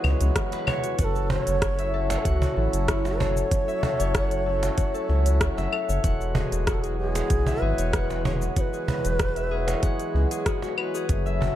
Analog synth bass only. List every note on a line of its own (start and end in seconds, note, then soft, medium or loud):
0.04 0.15 C#2 loud
0.21 0.31 C#2 medium
0.99 1.38 F#1 loud
1.47 2.17 F#1 medium
2.25 2.47 C#2 medium
2.57 2.68 A1 loud
2.73 3.44 F#1 medium
4.00 4.70 F#1 medium
5.09 5.49 C#2 loud
5.57 5.68 F#1 loud
5.89 5.99 F#1 loud
6.04 6.44 E1 loud
6.52 7.22 E1 medium
7.30 7.52 B1 medium
7.62 7.73 G#1 loud
7.78 8.49 E1 medium
9.05 9.75 E1 medium
10.14 10.26 C#2 loud
11.09 11.49 F#1 loud